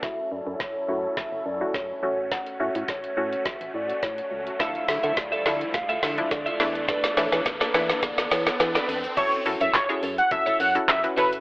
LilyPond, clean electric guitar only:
\new Staff \with { instrumentName = "Clean electric guitar" } { \time 4/4 \key fis \minor \tempo 4 = 105 r1 | r1 | <f' a' e''>8 r16 <f' a' e''>16 r16 <f' a' e''>16 <f' a' e''>16 r8 <f' a' e''>16 <f' a' e''>16 r8 <f' a' e''>16 <d' a' b'>16 r16 | <d' a' b'>8 r16 <d' a' b'>16 r16 <d' a' b'>16 <d' a' b'>16 r4. <d' a' b'>16 <d' a' b'>16 r16 |
<e' a' cis''>8 r16 <e' a' cis''>16 r16 <e' a' cis''>16 <e' a' cis''>16 r8 <e' a' cis''>16 <e' a' cis''>16 r8. <e' fis' cis''>16 r16 | }